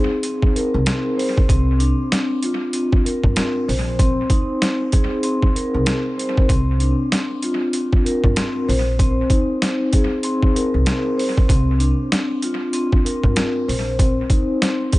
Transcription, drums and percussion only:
0.23 closed hi-hat medium
0.42 kick medium
0.56 closed hi-hat medium
0.86 snare loud
0.86 closed hi-hat medium
1.19 open hi-hat medium
1.37 kick loud
1.49 kick loud
1.49 closed hi-hat loud
1.80 closed hi-hat medium
2.12 snare loud
2.12 closed hi-hat medium
2.43 closed hi-hat medium
2.73 closed hi-hat medium
2.92 kick medium
3.06 closed hi-hat medium
3.24 kick loud
3.36 snare loud
3.36 closed hi-hat loud
3.69 open hi-hat medium
3.99 kick loud
3.99 closed hi-hat loud
4.30 kick loud
4.30 closed hi-hat medium
4.62 snare loud
4.62 closed hi-hat medium
4.92 kick loud
4.92 closed hi-hat medium
5.23 closed hi-hat medium
5.43 kick medium
5.56 closed hi-hat medium
5.86 snare loud
5.86 closed hi-hat medium
6.19 closed hi-hat medium
6.37 kick loud
6.49 kick loud
6.49 closed hi-hat loud
6.80 closed hi-hat medium
7.12 snare loud
7.12 closed hi-hat medium
7.42 closed hi-hat medium
7.73 closed hi-hat medium
7.93 kick medium
8.06 closed hi-hat medium
8.24 kick loud
8.36 snare loud
8.36 closed hi-hat loud
8.69 open hi-hat medium
8.99 kick loud
8.99 closed hi-hat loud
9.30 kick medium
9.30 closed hi-hat medium
9.62 snare loud
9.62 closed hi-hat medium
9.93 kick medium
9.93 closed hi-hat medium
10.23 closed hi-hat medium
10.43 kick medium
10.56 closed hi-hat medium
10.86 snare loud
10.86 closed hi-hat medium
11.19 open hi-hat medium
11.37 kick loud
11.49 kick loud
11.49 closed hi-hat loud
11.80 closed hi-hat medium
12.12 snare loud
12.12 closed hi-hat medium
12.42 closed hi-hat medium
12.73 closed hi-hat medium
12.92 kick medium
13.06 closed hi-hat medium
13.24 kick loud
13.36 snare loud
13.36 closed hi-hat medium
13.69 open hi-hat medium
13.99 kick loud
13.99 closed hi-hat loud
14.30 kick medium
14.30 closed hi-hat medium
14.62 snare loud
14.62 closed hi-hat medium
14.92 kick loud
14.92 closed hi-hat medium

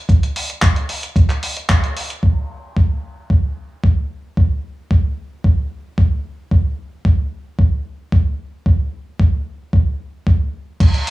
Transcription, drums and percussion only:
0.09 kick loud
0.09 closed hi-hat medium
0.23 closed hi-hat soft
0.36 open hi-hat loud
0.50 closed hi-hat soft
0.62 kick loud
0.62 clap loud
0.62 closed hi-hat medium
0.76 closed hi-hat soft
0.89 open hi-hat medium
1.03 closed hi-hat soft
1.16 kick loud
1.16 closed hi-hat medium
1.30 clap soft
1.30 closed hi-hat soft
1.43 open hi-hat loud
1.57 closed hi-hat soft
1.69 kick loud
1.69 clap loud
1.69 closed hi-hat medium
1.84 closed hi-hat soft
1.97 open hi-hat medium
2.10 closed hi-hat soft
2.23 kick loud
2.23 crash medium
2.77 kick loud
3.30 kick loud
3.84 kick loud
4.37 kick loud
4.91 kick loud
5.44 kick loud
5.98 kick loud
6.51 kick loud
7.05 kick loud
7.59 kick loud
8.12 kick loud
8.66 kick loud
9.20 kick loud
9.73 kick loud
10.27 kick loud
10.80 kick loud
10.80 closed hi-hat medium
10.80 crash loud
10.94 closed hi-hat soft
11.07 open hi-hat loud

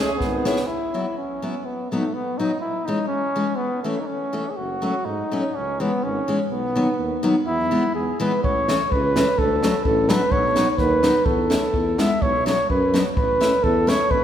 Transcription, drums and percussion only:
0.21 kick soft
0.21 snare soft
0.46 snare medium
0.56 snare medium
8.44 kick medium
8.69 snare medium
8.92 kick medium
9.16 snare medium
9.39 kick medium
9.63 snare medium
9.85 kick medium
10.09 snare medium
10.32 kick medium
10.56 snare medium
10.78 kick medium
10.78 snare soft
11.03 snare medium
11.26 kick medium
11.51 snare medium
11.74 kick soft
11.98 snare medium
12.22 kick medium
12.47 snare medium
12.70 kick soft
12.94 snare medium
13.17 kick medium
13.42 snare medium
13.64 kick medium
13.89 snare medium
14.11 kick medium

